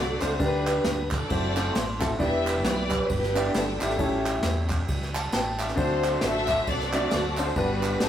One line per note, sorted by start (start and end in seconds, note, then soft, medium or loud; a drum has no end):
0.00 0.18 C2 loud
0.00 0.18 D3 medium
0.00 0.36 F#4 medium
0.00 0.37 A4 medium
0.00 0.22 D5 loud
0.20 0.37 C#2 medium
0.20 0.32 A3 medium
0.20 0.32 C4 medium
0.20 0.33 D4 medium
0.20 0.33 F#4 medium
0.20 0.40 C5 medium
0.20 0.33 C5 medium
0.20 clap medium
0.20 ride medium
0.39 0.78 D2 loud
0.39 1.07 D3 medium
0.39 0.96 D4 medium
0.39 1.26 D4 medium
0.39 0.96 G4 medium
0.39 1.27 G4 medium
0.39 0.47 A#4 medium
0.39 1.11 B4 loud
0.39 kick loud
0.39 ride medium
0.46 1.00 B4 medium
0.67 clap loud
0.67 ride medium
0.84 1.23 D2 medium
0.84 snare loud
0.84 ride medium
1.11 2.02 D5 loud
1.11 kick loud
1.11 clap medium
1.11 ride medium
1.15 1.99 A4 medium
1.29 1.68 F#1 loud
1.29 1.51 A3 medium
1.29 1.51 C4 medium
1.29 1.51 E4 medium
1.29 1.52 F#4 medium
1.29 1.52 C5 medium
1.29 kick loud
1.29 ride medium
1.55 1.80 A3 medium
1.55 1.80 C4 medium
1.55 1.80 E4 medium
1.55 1.80 F#4 medium
1.55 1.81 C5 medium
1.55 clap loud
1.55 ride medium
1.73 2.13 A1 loud
1.73 2.16 C6 medium
1.73 snare loud
1.73 ride medium
1.99 2.11 A3 medium
1.99 2.12 C4 medium
1.99 2.12 E4 medium
1.99 2.12 F#4 medium
1.99 2.12 A4 medium
1.99 kick loud
1.99 clap loud
1.99 ride medium
2.18 2.65 E1 loud
2.18 2.87 E3 medium
2.18 3.95 E3 medium
2.18 3.95 G3 medium
2.18 2.75 B3 medium
2.18 3.95 B3 medium
2.18 2.75 D4 medium
2.18 3.96 D4 medium
2.18 2.76 E4 medium
2.18 2.76 G4 medium
2.18 3.95 G4 medium
2.18 2.76 D5 medium
2.18 2.62 E5 loud
2.18 kick loud
2.18 ride medium
2.22 2.67 G4 medium
2.22 2.66 B4 medium
2.47 clap loud
2.47 ride medium
2.65 3.03 B1 loud
2.65 3.10 G4 medium
2.65 3.09 B4 medium
2.65 3.10 D5 loud
2.65 snare loud
2.65 ride medium
2.91 kick medium
2.91 clap medium
2.91 ride medium
3.09 3.48 G1 loud
3.09 3.95 D4 medium
3.09 3.96 G4 medium
3.09 3.54 B4 medium
3.09 kick loud
3.09 ride medium
3.23 snare soft
3.35 3.59 B3 medium
3.35 3.59 D4 medium
3.35 3.60 E4 medium
3.35 3.60 G4 medium
3.35 3.60 D5 medium
3.35 clap loud
3.35 ride medium
3.54 3.77 G1 medium
3.54 3.80 A4 medium
3.54 snare loud
3.54 ride medium
3.80 3.96 G#1 medium
3.80 3.91 B3 medium
3.80 4.68 C#4 medium
3.80 3.91 D4 medium
3.80 3.92 E4 medium
3.80 4.68 E4 medium
3.80 3.92 G4 medium
3.80 4.24 A4 medium
3.80 3.92 E5 medium
3.80 clap loud
3.80 ride medium
3.90 snare soft
3.98 4.37 A1 loud
3.98 4.66 A2 medium
3.98 5.75 E3 medium
3.98 5.75 G3 medium
3.98 4.55 A3 medium
3.98 5.75 A3 medium
3.98 4.06 C4 soft
3.98 4.55 C#4 medium
3.98 4.56 E4 medium
3.98 4.56 G4 medium
3.98 5.75 G4 medium
3.98 4.56 C#5 medium
3.98 kick loud
3.98 ride medium
4.06 5.78 C#4 medium
4.26 clap loud
4.26 ride medium
4.43 4.81 E2 loud
4.43 snare loud
4.43 ride medium
4.70 kick loud
4.70 clap medium
4.70 ride medium
4.88 5.27 C#2 medium
4.88 kick loud
4.88 ride medium
5.02 snare soft
5.15 5.32 A5 medium
5.15 clap loud
5.15 ride medium
5.32 5.71 A1 loud
5.32 5.59 G5 medium
5.32 5.75 A5 medium
5.32 snare loud
5.32 ride medium
5.59 6.02 E5 medium
5.59 clap loud
5.59 ride medium
5.68 snare soft
5.75 6.16 D2 loud
5.75 6.44 D3 medium
5.75 7.53 F#3 medium
5.75 6.33 A3 medium
5.75 7.53 A3 medium
5.75 6.33 C4 medium
5.75 7.53 C4 medium
5.75 6.33 D4 medium
5.75 7.53 D4 medium
5.75 6.34 F#4 medium
5.75 6.63 F#4 medium
5.75 6.20 A4 medium
5.75 7.54 A4 medium
5.75 6.34 C5 medium
5.75 6.20 C5 loud
5.75 kick loud
5.75 ride medium
6.04 clap loud
6.04 ride medium
6.21 6.60 A1 loud
6.21 6.65 A4 medium
6.21 7.07 C5 medium
6.21 6.67 E5 loud
6.21 snare loud
6.21 ride medium
6.48 kick medium
6.48 clap loud
6.48 ride medium
6.67 7.06 C2 loud
6.67 7.53 F#4 medium
6.67 7.52 A4 medium
6.67 7.39 D5 loud
6.67 kick loud
6.67 ride medium
6.80 snare soft
6.93 7.17 A3 medium
6.93 7.17 C4 medium
6.93 7.18 D4 medium
6.93 7.18 F#4 medium
6.93 7.18 D5 medium
6.93 clap loud
6.93 ride medium
7.11 7.50 D2 loud
7.11 snare loud
7.11 ride medium
7.37 7.49 A3 medium
7.37 7.49 C4 medium
7.37 7.49 D4 medium
7.37 7.50 F#4 medium
7.37 7.56 C5 medium
7.37 7.50 C5 medium
7.37 clap loud
7.37 ride medium
7.55 7.95 G1 medium
7.55 8.09 G2 medium
7.55 8.09 G3 medium
7.55 8.09 B3 medium
7.55 8.09 D4 medium
7.55 8.09 F#4 medium
7.55 8.09 B4 medium
7.55 7.98 B4 medium
7.55 8.09 B4 medium
7.55 8.09 F#5 medium
7.55 kick loud
7.55 ride medium
7.83 clap loud
7.83 ride medium
8.00 8.09 A1 medium
8.00 8.09 A4 medium
8.00 snare loud
8.00 ride medium